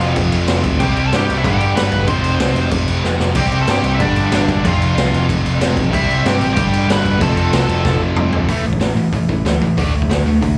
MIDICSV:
0, 0, Header, 1, 5, 480
1, 0, Start_track
1, 0, Tempo, 320856
1, 1188, Time_signature, 4, 2, 24, 8
1, 15826, End_track
2, 0, Start_track
2, 0, Title_t, "Lead electric guitar"
2, 0, Program_c, 0, 29
2, 0, Note_on_c, 0, 65, 73
2, 0, Note_on_c, 0, 77, 79
2, 178, Note_off_c, 0, 65, 0
2, 180, Note_off_c, 0, 77, 0
2, 1190, Note_on_c, 0, 79, 94
2, 1197, Note_on_c, 0, 67, 70
2, 1528, Note_off_c, 0, 67, 0
2, 1560, Note_off_c, 0, 79, 0
2, 1597, Note_on_c, 0, 69, 73
2, 1600, Note_on_c, 0, 81, 90
2, 1687, Note_off_c, 0, 69, 0
2, 1702, Note_off_c, 0, 81, 0
2, 1702, Note_on_c, 0, 79, 99
2, 1726, Note_on_c, 0, 67, 77
2, 2034, Note_off_c, 0, 67, 0
2, 2045, Note_off_c, 0, 79, 0
2, 2064, Note_on_c, 0, 76, 94
2, 2071, Note_on_c, 0, 64, 69
2, 2159, Note_off_c, 0, 64, 0
2, 2165, Note_on_c, 0, 67, 77
2, 2169, Note_off_c, 0, 76, 0
2, 2183, Note_on_c, 0, 79, 102
2, 2603, Note_off_c, 0, 67, 0
2, 2624, Note_on_c, 0, 71, 73
2, 2626, Note_on_c, 0, 83, 83
2, 2659, Note_off_c, 0, 79, 0
2, 3073, Note_off_c, 0, 71, 0
2, 3099, Note_off_c, 0, 83, 0
2, 3105, Note_on_c, 0, 84, 108
2, 3124, Note_on_c, 0, 72, 85
2, 4006, Note_off_c, 0, 84, 0
2, 4015, Note_off_c, 0, 72, 0
2, 5040, Note_on_c, 0, 67, 84
2, 5059, Note_on_c, 0, 79, 102
2, 5368, Note_off_c, 0, 67, 0
2, 5405, Note_on_c, 0, 69, 80
2, 5413, Note_off_c, 0, 79, 0
2, 5413, Note_on_c, 0, 81, 100
2, 5509, Note_off_c, 0, 69, 0
2, 5520, Note_off_c, 0, 81, 0
2, 5548, Note_on_c, 0, 67, 88
2, 5556, Note_on_c, 0, 79, 100
2, 5864, Note_off_c, 0, 67, 0
2, 5897, Note_off_c, 0, 79, 0
2, 5903, Note_on_c, 0, 76, 99
2, 5913, Note_on_c, 0, 64, 61
2, 6000, Note_off_c, 0, 64, 0
2, 6003, Note_on_c, 0, 74, 97
2, 6008, Note_off_c, 0, 76, 0
2, 6009, Note_on_c, 0, 62, 78
2, 6441, Note_off_c, 0, 74, 0
2, 6444, Note_off_c, 0, 62, 0
2, 6485, Note_on_c, 0, 62, 65
2, 6501, Note_on_c, 0, 74, 70
2, 6924, Note_off_c, 0, 62, 0
2, 6973, Note_off_c, 0, 74, 0
2, 6995, Note_on_c, 0, 77, 88
2, 7007, Note_on_c, 0, 65, 73
2, 7869, Note_off_c, 0, 77, 0
2, 7875, Note_off_c, 0, 65, 0
2, 8884, Note_on_c, 0, 64, 69
2, 8893, Note_on_c, 0, 76, 91
2, 9208, Note_off_c, 0, 64, 0
2, 9213, Note_off_c, 0, 76, 0
2, 9260, Note_on_c, 0, 64, 58
2, 9260, Note_on_c, 0, 76, 85
2, 9352, Note_off_c, 0, 64, 0
2, 9364, Note_off_c, 0, 76, 0
2, 9370, Note_on_c, 0, 67, 76
2, 9384, Note_on_c, 0, 79, 99
2, 9691, Note_off_c, 0, 67, 0
2, 9732, Note_off_c, 0, 79, 0
2, 9771, Note_on_c, 0, 67, 79
2, 9784, Note_on_c, 0, 79, 85
2, 10296, Note_off_c, 0, 67, 0
2, 10339, Note_on_c, 0, 71, 80
2, 10355, Note_off_c, 0, 79, 0
2, 10355, Note_on_c, 0, 83, 97
2, 10766, Note_off_c, 0, 71, 0
2, 10800, Note_on_c, 0, 69, 84
2, 10808, Note_on_c, 0, 81, 102
2, 10820, Note_off_c, 0, 83, 0
2, 11236, Note_off_c, 0, 69, 0
2, 11240, Note_off_c, 0, 81, 0
2, 11315, Note_on_c, 0, 69, 72
2, 11323, Note_on_c, 0, 81, 96
2, 11958, Note_off_c, 0, 69, 0
2, 11962, Note_off_c, 0, 81, 0
2, 15826, End_track
3, 0, Start_track
3, 0, Title_t, "Distorted electric guitar"
3, 0, Program_c, 1, 30
3, 0, Note_on_c, 1, 41, 96
3, 0, Note_on_c, 1, 48, 108
3, 0, Note_on_c, 1, 53, 116
3, 1175, Note_off_c, 1, 41, 0
3, 1181, Note_off_c, 1, 48, 0
3, 1191, Note_off_c, 1, 53, 0
3, 1199, Note_on_c, 1, 48, 115
3, 1217, Note_on_c, 1, 55, 113
3, 1233, Note_on_c, 1, 60, 127
3, 2139, Note_off_c, 1, 48, 0
3, 2148, Note_off_c, 1, 55, 0
3, 2150, Note_on_c, 1, 43, 105
3, 2156, Note_off_c, 1, 60, 0
3, 2167, Note_on_c, 1, 50, 97
3, 2175, Note_on_c, 1, 55, 99
3, 3094, Note_off_c, 1, 43, 0
3, 3103, Note_off_c, 1, 50, 0
3, 3106, Note_on_c, 1, 41, 97
3, 3107, Note_off_c, 1, 55, 0
3, 3127, Note_on_c, 1, 48, 102
3, 3135, Note_on_c, 1, 53, 107
3, 4990, Note_off_c, 1, 48, 0
3, 5008, Note_on_c, 1, 48, 91
3, 5011, Note_off_c, 1, 41, 0
3, 5026, Note_off_c, 1, 53, 0
3, 5032, Note_on_c, 1, 55, 103
3, 5042, Note_on_c, 1, 60, 124
3, 5962, Note_off_c, 1, 48, 0
3, 5962, Note_on_c, 1, 43, 96
3, 5974, Note_off_c, 1, 55, 0
3, 5979, Note_off_c, 1, 60, 0
3, 5985, Note_on_c, 1, 50, 106
3, 6005, Note_on_c, 1, 55, 103
3, 6918, Note_off_c, 1, 43, 0
3, 6930, Note_off_c, 1, 50, 0
3, 6935, Note_on_c, 1, 41, 96
3, 6940, Note_off_c, 1, 55, 0
3, 6955, Note_on_c, 1, 48, 104
3, 6967, Note_on_c, 1, 53, 110
3, 8828, Note_off_c, 1, 48, 0
3, 8843, Note_off_c, 1, 41, 0
3, 8846, Note_on_c, 1, 48, 101
3, 8858, Note_off_c, 1, 53, 0
3, 8864, Note_on_c, 1, 55, 101
3, 8881, Note_on_c, 1, 60, 120
3, 9798, Note_off_c, 1, 48, 0
3, 9807, Note_off_c, 1, 55, 0
3, 9807, Note_on_c, 1, 43, 101
3, 9815, Note_off_c, 1, 60, 0
3, 9824, Note_on_c, 1, 50, 100
3, 9843, Note_on_c, 1, 55, 109
3, 10758, Note_off_c, 1, 43, 0
3, 10764, Note_on_c, 1, 41, 98
3, 10766, Note_off_c, 1, 50, 0
3, 10776, Note_off_c, 1, 55, 0
3, 10783, Note_on_c, 1, 48, 105
3, 10797, Note_on_c, 1, 53, 112
3, 12677, Note_off_c, 1, 41, 0
3, 12686, Note_off_c, 1, 48, 0
3, 12692, Note_off_c, 1, 53, 0
3, 12698, Note_on_c, 1, 52, 93
3, 12699, Note_on_c, 1, 45, 88
3, 12711, Note_on_c, 1, 57, 109
3, 12915, Note_off_c, 1, 45, 0
3, 12924, Note_off_c, 1, 52, 0
3, 12930, Note_off_c, 1, 57, 0
3, 12933, Note_on_c, 1, 45, 59
3, 12940, Note_on_c, 1, 52, 75
3, 13146, Note_off_c, 1, 45, 0
3, 13155, Note_off_c, 1, 52, 0
3, 13164, Note_on_c, 1, 45, 69
3, 13172, Note_on_c, 1, 52, 79
3, 13388, Note_off_c, 1, 45, 0
3, 13392, Note_off_c, 1, 52, 0
3, 13410, Note_on_c, 1, 45, 72
3, 13416, Note_on_c, 1, 52, 71
3, 13631, Note_off_c, 1, 45, 0
3, 13634, Note_off_c, 1, 52, 0
3, 13663, Note_on_c, 1, 45, 67
3, 13667, Note_on_c, 1, 52, 82
3, 13873, Note_off_c, 1, 52, 0
3, 13874, Note_off_c, 1, 45, 0
3, 13891, Note_on_c, 1, 52, 78
3, 13892, Note_on_c, 1, 45, 70
3, 14112, Note_off_c, 1, 45, 0
3, 14112, Note_off_c, 1, 52, 0
3, 14136, Note_on_c, 1, 52, 82
3, 14138, Note_on_c, 1, 45, 68
3, 14355, Note_off_c, 1, 52, 0
3, 14356, Note_off_c, 1, 45, 0
3, 14388, Note_on_c, 1, 45, 64
3, 14394, Note_on_c, 1, 52, 80
3, 14601, Note_off_c, 1, 45, 0
3, 14604, Note_off_c, 1, 52, 0
3, 14618, Note_on_c, 1, 50, 96
3, 14625, Note_on_c, 1, 57, 96
3, 14632, Note_on_c, 1, 62, 100
3, 14846, Note_off_c, 1, 50, 0
3, 14849, Note_off_c, 1, 57, 0
3, 14853, Note_off_c, 1, 62, 0
3, 14863, Note_on_c, 1, 50, 64
3, 14870, Note_on_c, 1, 57, 85
3, 15080, Note_off_c, 1, 50, 0
3, 15083, Note_off_c, 1, 57, 0
3, 15104, Note_on_c, 1, 57, 79
3, 15106, Note_on_c, 1, 50, 70
3, 15320, Note_off_c, 1, 57, 0
3, 15321, Note_off_c, 1, 50, 0
3, 15351, Note_on_c, 1, 50, 70
3, 15358, Note_on_c, 1, 57, 77
3, 15564, Note_off_c, 1, 50, 0
3, 15567, Note_off_c, 1, 57, 0
3, 15583, Note_on_c, 1, 50, 73
3, 15594, Note_on_c, 1, 57, 77
3, 15800, Note_off_c, 1, 50, 0
3, 15806, Note_off_c, 1, 57, 0
3, 15826, End_track
4, 0, Start_track
4, 0, Title_t, "Picked electric bass"
4, 0, Program_c, 2, 34
4, 0, Note_on_c, 2, 29, 93
4, 188, Note_off_c, 2, 29, 0
4, 232, Note_on_c, 2, 29, 101
4, 423, Note_off_c, 2, 29, 0
4, 483, Note_on_c, 2, 29, 93
4, 670, Note_off_c, 2, 29, 0
4, 721, Note_on_c, 2, 29, 93
4, 909, Note_off_c, 2, 29, 0
4, 963, Note_on_c, 2, 38, 98
4, 1150, Note_off_c, 2, 38, 0
4, 1190, Note_on_c, 2, 36, 102
4, 1382, Note_off_c, 2, 36, 0
4, 1457, Note_on_c, 2, 36, 100
4, 1638, Note_off_c, 2, 36, 0
4, 1685, Note_on_c, 2, 43, 95
4, 1871, Note_off_c, 2, 43, 0
4, 1943, Note_on_c, 2, 36, 95
4, 2122, Note_off_c, 2, 36, 0
4, 2161, Note_on_c, 2, 31, 102
4, 2349, Note_off_c, 2, 31, 0
4, 2387, Note_on_c, 2, 31, 96
4, 2580, Note_off_c, 2, 31, 0
4, 2618, Note_on_c, 2, 31, 92
4, 2815, Note_off_c, 2, 31, 0
4, 2878, Note_on_c, 2, 31, 100
4, 3067, Note_off_c, 2, 31, 0
4, 3106, Note_on_c, 2, 29, 98
4, 3300, Note_off_c, 2, 29, 0
4, 3332, Note_on_c, 2, 29, 91
4, 3531, Note_off_c, 2, 29, 0
4, 3578, Note_on_c, 2, 36, 92
4, 3775, Note_off_c, 2, 36, 0
4, 3817, Note_on_c, 2, 29, 89
4, 4014, Note_off_c, 2, 29, 0
4, 4059, Note_on_c, 2, 29, 93
4, 4255, Note_off_c, 2, 29, 0
4, 4309, Note_on_c, 2, 29, 95
4, 4501, Note_off_c, 2, 29, 0
4, 4545, Note_on_c, 2, 29, 82
4, 4739, Note_off_c, 2, 29, 0
4, 4789, Note_on_c, 2, 29, 90
4, 4981, Note_off_c, 2, 29, 0
4, 5021, Note_on_c, 2, 36, 94
4, 5216, Note_off_c, 2, 36, 0
4, 5276, Note_on_c, 2, 36, 91
4, 5465, Note_off_c, 2, 36, 0
4, 5502, Note_on_c, 2, 43, 92
4, 5697, Note_off_c, 2, 43, 0
4, 5725, Note_on_c, 2, 36, 93
4, 5926, Note_off_c, 2, 36, 0
4, 5985, Note_on_c, 2, 31, 103
4, 6178, Note_off_c, 2, 31, 0
4, 6238, Note_on_c, 2, 31, 100
4, 6426, Note_off_c, 2, 31, 0
4, 6475, Note_on_c, 2, 31, 89
4, 6664, Note_off_c, 2, 31, 0
4, 6709, Note_on_c, 2, 31, 92
4, 6900, Note_off_c, 2, 31, 0
4, 6960, Note_on_c, 2, 29, 102
4, 7147, Note_off_c, 2, 29, 0
4, 7187, Note_on_c, 2, 29, 96
4, 7378, Note_off_c, 2, 29, 0
4, 7425, Note_on_c, 2, 36, 92
4, 7617, Note_off_c, 2, 36, 0
4, 7675, Note_on_c, 2, 29, 92
4, 7863, Note_off_c, 2, 29, 0
4, 7913, Note_on_c, 2, 29, 101
4, 8102, Note_off_c, 2, 29, 0
4, 8145, Note_on_c, 2, 29, 100
4, 8337, Note_off_c, 2, 29, 0
4, 8375, Note_on_c, 2, 29, 93
4, 8571, Note_off_c, 2, 29, 0
4, 8629, Note_on_c, 2, 35, 102
4, 8819, Note_off_c, 2, 35, 0
4, 8872, Note_on_c, 2, 36, 96
4, 9061, Note_off_c, 2, 36, 0
4, 9107, Note_on_c, 2, 36, 94
4, 9297, Note_off_c, 2, 36, 0
4, 9343, Note_on_c, 2, 43, 92
4, 9535, Note_off_c, 2, 43, 0
4, 9572, Note_on_c, 2, 33, 86
4, 9768, Note_off_c, 2, 33, 0
4, 9828, Note_on_c, 2, 31, 102
4, 10018, Note_off_c, 2, 31, 0
4, 10056, Note_on_c, 2, 31, 101
4, 10250, Note_off_c, 2, 31, 0
4, 10292, Note_on_c, 2, 31, 83
4, 10487, Note_off_c, 2, 31, 0
4, 10550, Note_on_c, 2, 31, 96
4, 10738, Note_off_c, 2, 31, 0
4, 10788, Note_on_c, 2, 29, 102
4, 10977, Note_off_c, 2, 29, 0
4, 11001, Note_on_c, 2, 29, 101
4, 11201, Note_off_c, 2, 29, 0
4, 11252, Note_on_c, 2, 36, 99
4, 11447, Note_off_c, 2, 36, 0
4, 11485, Note_on_c, 2, 29, 85
4, 11683, Note_off_c, 2, 29, 0
4, 11742, Note_on_c, 2, 29, 94
4, 11933, Note_off_c, 2, 29, 0
4, 11965, Note_on_c, 2, 29, 97
4, 12163, Note_off_c, 2, 29, 0
4, 12206, Note_on_c, 2, 29, 87
4, 12404, Note_off_c, 2, 29, 0
4, 12441, Note_on_c, 2, 29, 90
4, 12641, Note_off_c, 2, 29, 0
4, 12698, Note_on_c, 2, 33, 89
4, 12907, Note_off_c, 2, 33, 0
4, 12930, Note_on_c, 2, 33, 89
4, 13142, Note_off_c, 2, 33, 0
4, 13161, Note_on_c, 2, 33, 77
4, 13378, Note_off_c, 2, 33, 0
4, 13388, Note_on_c, 2, 33, 84
4, 13610, Note_off_c, 2, 33, 0
4, 13657, Note_on_c, 2, 33, 90
4, 13867, Note_off_c, 2, 33, 0
4, 13899, Note_on_c, 2, 33, 86
4, 14109, Note_off_c, 2, 33, 0
4, 14117, Note_on_c, 2, 38, 83
4, 14336, Note_off_c, 2, 38, 0
4, 14395, Note_on_c, 2, 33, 87
4, 14598, Note_off_c, 2, 33, 0
4, 14625, Note_on_c, 2, 38, 90
4, 15042, Note_off_c, 2, 38, 0
4, 15105, Note_on_c, 2, 38, 88
4, 15313, Note_off_c, 2, 38, 0
4, 15345, Note_on_c, 2, 38, 84
4, 15553, Note_off_c, 2, 38, 0
4, 15601, Note_on_c, 2, 38, 94
4, 15802, Note_off_c, 2, 38, 0
4, 15826, End_track
5, 0, Start_track
5, 0, Title_t, "Drums"
5, 12, Note_on_c, 9, 49, 66
5, 162, Note_off_c, 9, 49, 0
5, 239, Note_on_c, 9, 49, 92
5, 242, Note_on_c, 9, 36, 120
5, 388, Note_off_c, 9, 49, 0
5, 392, Note_off_c, 9, 36, 0
5, 481, Note_on_c, 9, 49, 76
5, 630, Note_off_c, 9, 49, 0
5, 712, Note_on_c, 9, 49, 93
5, 717, Note_on_c, 9, 38, 122
5, 862, Note_off_c, 9, 49, 0
5, 866, Note_off_c, 9, 38, 0
5, 953, Note_on_c, 9, 49, 69
5, 958, Note_on_c, 9, 36, 92
5, 1102, Note_off_c, 9, 49, 0
5, 1108, Note_off_c, 9, 36, 0
5, 1195, Note_on_c, 9, 49, 91
5, 1199, Note_on_c, 9, 36, 121
5, 1345, Note_off_c, 9, 49, 0
5, 1349, Note_off_c, 9, 36, 0
5, 1445, Note_on_c, 9, 49, 62
5, 1594, Note_off_c, 9, 49, 0
5, 1682, Note_on_c, 9, 49, 80
5, 1687, Note_on_c, 9, 38, 106
5, 1832, Note_off_c, 9, 49, 0
5, 1836, Note_off_c, 9, 38, 0
5, 1940, Note_on_c, 9, 49, 63
5, 2089, Note_off_c, 9, 49, 0
5, 2161, Note_on_c, 9, 36, 118
5, 2169, Note_on_c, 9, 49, 79
5, 2311, Note_off_c, 9, 36, 0
5, 2318, Note_off_c, 9, 49, 0
5, 2402, Note_on_c, 9, 49, 68
5, 2552, Note_off_c, 9, 49, 0
5, 2646, Note_on_c, 9, 49, 91
5, 2651, Note_on_c, 9, 38, 125
5, 2796, Note_off_c, 9, 49, 0
5, 2800, Note_off_c, 9, 38, 0
5, 2870, Note_on_c, 9, 49, 61
5, 2873, Note_on_c, 9, 36, 85
5, 3020, Note_off_c, 9, 49, 0
5, 3023, Note_off_c, 9, 36, 0
5, 3102, Note_on_c, 9, 49, 90
5, 3110, Note_on_c, 9, 36, 121
5, 3252, Note_off_c, 9, 49, 0
5, 3259, Note_off_c, 9, 36, 0
5, 3349, Note_on_c, 9, 49, 68
5, 3498, Note_off_c, 9, 49, 0
5, 3588, Note_on_c, 9, 49, 91
5, 3593, Note_on_c, 9, 38, 114
5, 3738, Note_off_c, 9, 49, 0
5, 3742, Note_off_c, 9, 38, 0
5, 3830, Note_on_c, 9, 49, 63
5, 3979, Note_off_c, 9, 49, 0
5, 4060, Note_on_c, 9, 49, 97
5, 4065, Note_on_c, 9, 36, 115
5, 4209, Note_off_c, 9, 49, 0
5, 4214, Note_off_c, 9, 36, 0
5, 4305, Note_on_c, 9, 49, 74
5, 4454, Note_off_c, 9, 49, 0
5, 4551, Note_on_c, 9, 38, 73
5, 4701, Note_off_c, 9, 38, 0
5, 4783, Note_on_c, 9, 38, 88
5, 4932, Note_off_c, 9, 38, 0
5, 5010, Note_on_c, 9, 49, 111
5, 5022, Note_on_c, 9, 36, 123
5, 5159, Note_off_c, 9, 49, 0
5, 5172, Note_off_c, 9, 36, 0
5, 5264, Note_on_c, 9, 49, 67
5, 5414, Note_off_c, 9, 49, 0
5, 5497, Note_on_c, 9, 49, 87
5, 5501, Note_on_c, 9, 38, 113
5, 5646, Note_off_c, 9, 49, 0
5, 5651, Note_off_c, 9, 38, 0
5, 5742, Note_on_c, 9, 49, 67
5, 5892, Note_off_c, 9, 49, 0
5, 5982, Note_on_c, 9, 49, 83
5, 5987, Note_on_c, 9, 36, 119
5, 6132, Note_off_c, 9, 49, 0
5, 6136, Note_off_c, 9, 36, 0
5, 6225, Note_on_c, 9, 49, 64
5, 6374, Note_off_c, 9, 49, 0
5, 6461, Note_on_c, 9, 49, 91
5, 6465, Note_on_c, 9, 38, 127
5, 6610, Note_off_c, 9, 49, 0
5, 6615, Note_off_c, 9, 38, 0
5, 6710, Note_on_c, 9, 36, 85
5, 6713, Note_on_c, 9, 49, 64
5, 6860, Note_off_c, 9, 36, 0
5, 6863, Note_off_c, 9, 49, 0
5, 6954, Note_on_c, 9, 49, 90
5, 6955, Note_on_c, 9, 36, 121
5, 7104, Note_off_c, 9, 49, 0
5, 7105, Note_off_c, 9, 36, 0
5, 7206, Note_on_c, 9, 49, 67
5, 7355, Note_off_c, 9, 49, 0
5, 7446, Note_on_c, 9, 49, 85
5, 7451, Note_on_c, 9, 38, 115
5, 7596, Note_off_c, 9, 49, 0
5, 7601, Note_off_c, 9, 38, 0
5, 7693, Note_on_c, 9, 49, 64
5, 7842, Note_off_c, 9, 49, 0
5, 7918, Note_on_c, 9, 36, 116
5, 7924, Note_on_c, 9, 49, 86
5, 8068, Note_off_c, 9, 36, 0
5, 8074, Note_off_c, 9, 49, 0
5, 8163, Note_on_c, 9, 49, 71
5, 8313, Note_off_c, 9, 49, 0
5, 8396, Note_on_c, 9, 49, 95
5, 8400, Note_on_c, 9, 38, 122
5, 8545, Note_off_c, 9, 49, 0
5, 8550, Note_off_c, 9, 38, 0
5, 8631, Note_on_c, 9, 49, 74
5, 8633, Note_on_c, 9, 36, 86
5, 8780, Note_off_c, 9, 49, 0
5, 8782, Note_off_c, 9, 36, 0
5, 8876, Note_on_c, 9, 36, 115
5, 8885, Note_on_c, 9, 49, 99
5, 9026, Note_off_c, 9, 36, 0
5, 9035, Note_off_c, 9, 49, 0
5, 9133, Note_on_c, 9, 49, 71
5, 9282, Note_off_c, 9, 49, 0
5, 9361, Note_on_c, 9, 49, 89
5, 9365, Note_on_c, 9, 38, 119
5, 9510, Note_off_c, 9, 49, 0
5, 9515, Note_off_c, 9, 38, 0
5, 9591, Note_on_c, 9, 49, 68
5, 9740, Note_off_c, 9, 49, 0
5, 9820, Note_on_c, 9, 49, 87
5, 9831, Note_on_c, 9, 36, 116
5, 9969, Note_off_c, 9, 49, 0
5, 9980, Note_off_c, 9, 36, 0
5, 10073, Note_on_c, 9, 49, 72
5, 10223, Note_off_c, 9, 49, 0
5, 10319, Note_on_c, 9, 49, 95
5, 10324, Note_on_c, 9, 38, 127
5, 10469, Note_off_c, 9, 49, 0
5, 10473, Note_off_c, 9, 38, 0
5, 10553, Note_on_c, 9, 36, 87
5, 10556, Note_on_c, 9, 49, 63
5, 10703, Note_off_c, 9, 36, 0
5, 10706, Note_off_c, 9, 49, 0
5, 10785, Note_on_c, 9, 49, 86
5, 10791, Note_on_c, 9, 36, 120
5, 10934, Note_off_c, 9, 49, 0
5, 10940, Note_off_c, 9, 36, 0
5, 11027, Note_on_c, 9, 49, 65
5, 11177, Note_off_c, 9, 49, 0
5, 11264, Note_on_c, 9, 49, 86
5, 11268, Note_on_c, 9, 38, 106
5, 11413, Note_off_c, 9, 49, 0
5, 11418, Note_off_c, 9, 38, 0
5, 11508, Note_on_c, 9, 49, 67
5, 11658, Note_off_c, 9, 49, 0
5, 11744, Note_on_c, 9, 36, 120
5, 11749, Note_on_c, 9, 38, 69
5, 11893, Note_off_c, 9, 36, 0
5, 11898, Note_off_c, 9, 38, 0
5, 12212, Note_on_c, 9, 45, 109
5, 12362, Note_off_c, 9, 45, 0
5, 12454, Note_on_c, 9, 43, 99
5, 12603, Note_off_c, 9, 43, 0
5, 12694, Note_on_c, 9, 46, 61
5, 12697, Note_on_c, 9, 36, 109
5, 12843, Note_off_c, 9, 46, 0
5, 12846, Note_off_c, 9, 36, 0
5, 13057, Note_on_c, 9, 36, 80
5, 13172, Note_on_c, 9, 46, 56
5, 13177, Note_on_c, 9, 38, 100
5, 13206, Note_off_c, 9, 36, 0
5, 13322, Note_off_c, 9, 46, 0
5, 13326, Note_off_c, 9, 38, 0
5, 13651, Note_on_c, 9, 46, 52
5, 13654, Note_on_c, 9, 36, 106
5, 13800, Note_off_c, 9, 46, 0
5, 13804, Note_off_c, 9, 36, 0
5, 13900, Note_on_c, 9, 36, 87
5, 14050, Note_off_c, 9, 36, 0
5, 14150, Note_on_c, 9, 46, 55
5, 14155, Note_on_c, 9, 38, 109
5, 14300, Note_off_c, 9, 46, 0
5, 14304, Note_off_c, 9, 38, 0
5, 14387, Note_on_c, 9, 36, 79
5, 14537, Note_off_c, 9, 36, 0
5, 14629, Note_on_c, 9, 36, 115
5, 14639, Note_on_c, 9, 46, 53
5, 14779, Note_off_c, 9, 36, 0
5, 14789, Note_off_c, 9, 46, 0
5, 14990, Note_on_c, 9, 36, 88
5, 15120, Note_on_c, 9, 46, 54
5, 15124, Note_on_c, 9, 38, 104
5, 15140, Note_off_c, 9, 36, 0
5, 15269, Note_off_c, 9, 46, 0
5, 15274, Note_off_c, 9, 38, 0
5, 15596, Note_on_c, 9, 36, 111
5, 15600, Note_on_c, 9, 46, 56
5, 15746, Note_off_c, 9, 36, 0
5, 15750, Note_off_c, 9, 46, 0
5, 15826, End_track
0, 0, End_of_file